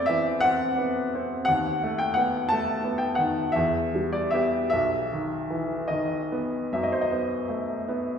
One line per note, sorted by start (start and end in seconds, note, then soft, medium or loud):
0.00 1.40 E2 soft
0.00 1.49 A3 soft
0.00 0.78 B3 soft
0.00 0.28 C4 soft
0.00 1.49 A4 medium
0.00 1.49 B4 medium
0.00 1.49 C5 medium
0.00 1.49 D5 medium
0.06 0.64 E3 soft
0.06 0.41 E5 medium
0.40 0.99 C4 soft
0.40 1.43 F#5 medium
0.78 1.13 B3 soft
1.15 1.48 C4 soft
1.45 3.51 D#2 soft
1.45 1.98 F#5 medium
1.83 2.37 A3 soft
1.98 2.16 G5 medium
2.14 2.50 B3 soft
2.14 2.49 F#5 medium
2.49 3.05 A3 soft
2.49 3.00 A5 medium
2.84 3.40 B3 soft
2.98 3.17 G5 medium
3.15 3.55 D#3 soft
3.15 3.53 F#5 medium
3.52 4.69 E2 soft
3.52 4.11 E5 medium
3.95 4.57 G3 soft
4.12 4.32 D5 medium
4.31 4.68 B3 soft
4.31 4.69 G4 soft
4.31 4.68 E5 medium
4.70 8.19 B1 soft
4.70 5.89 E5 medium
5.13 5.74 D#3 soft
5.50 5.90 E3 soft
5.88 6.56 D#3 soft
5.88 6.71 D#5 soft
6.32 6.96 B3 soft
6.73 7.34 F#2 soft
6.73 6.82 E5 soft
6.83 6.92 D#5 soft
6.92 7.01 C5 soft
7.01 7.11 D#5 soft
7.11 7.73 B3 soft
7.49 7.89 A3 soft
7.88 8.19 B3 soft